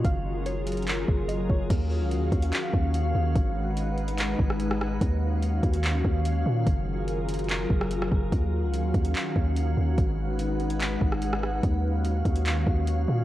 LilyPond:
<<
  \new Staff \with { instrumentName = "Synth pluck" } { \time 4/4 \key ees \minor \tempo 4 = 145 f''4 des''2 ees''8 des''8 | r1 | r1 | r1 |
r1 | r1 | r1 | r1 | }
  \new Staff \with { instrumentName = "Ambient pad" } { \time 4/4 \key ees \minor <ges f' aes' bes'>1 | <ees des' ges' f''>1 | <aes ees' ces'' ges''>1 | <ees des' ges' f''>1 |
<ges f' aes' bes'>1 | <ees des' ges' f''>1 | <aes ees' ces'' ges''>1 | <ees des' ges' f''>1 | }
  \new Staff \with { instrumentName = "808-style bass" } { \clef bass \time 4/4 \key ees \minor ges,,2~ ges,,8 ges,,4 ges,,8 | ees,8. des,16. ees,16. ees,8 r8 ees,4 ees,8 | aes,,2~ aes,,8 aes,,4. | ees,4. ees,4 ees,4 bes,8 |
ges,,2~ ges,,8 ges,,4 ges,,8 | ees,8. des,16. ees,16. ees,8 r8 ees,4 ees,8 | aes,,2~ aes,,8 aes,,4. | ees,4. ees,4 ees,4 bes,8 | }
  \new DrumStaff \with { instrumentName = "Drums" } \drummode { \time 4/4 <hh bd>4 hh8 hh32 hh32 hh32 hh32 <hc hh>8 bd8 hh8 bd8 | <cymc hh bd>4 hh8 <hh bd>16 hh16 <hc hh>8 bd8 hh4 | <hh bd>4 hh8 hh16 hh16 <hc hh>8 bd16 ss16 hh16 ss16 ss8 | <hh bd>4 hh8 <hh bd>16 hh16 <hc hh>8 bd8 hh4 |
<hh bd>4 hh8 hh32 hh32 hh32 hh32 <hc hh>8 bd16 ss16 hh16 ss16 bd8 | <hh bd>4 hh8 <hh bd>16 hh16 <hc hh>8 bd8 hh4 | <hh bd>4 hh8 hh16 hh16 <hc hh>8 bd16 ss16 hh16 ss16 ss8 | <hh bd>4 hh8 <hh bd>16 hh16 <hc hh>8 bd8 hh4 | }
>>